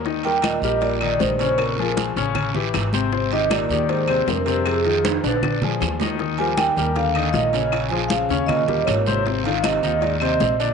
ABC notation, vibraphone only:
X:1
M:4/4
L:1/8
Q:1/4=157
K:Eb
V:1 name="Vibraphone"
z g e2 d2 c2 | B2 z6 | z e d2 c2 B2 | A2 z6 |
z a g2 f2 e2 | z a f2 e2 _d2 | z f e2 d e2 d |]